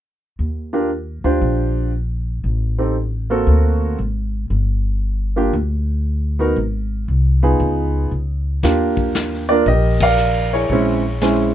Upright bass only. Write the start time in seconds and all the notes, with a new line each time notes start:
0.39 D#2
1.24 D2
1.41 A#1
2.44 A1
3.47 D2
3.98 G#1
4.50 G1
5.53 D2
6.56 G#1
7.08 C2
7.60 C#2
8.11 C#2
8.63 D#2
9.66 A#1
10.70 A#1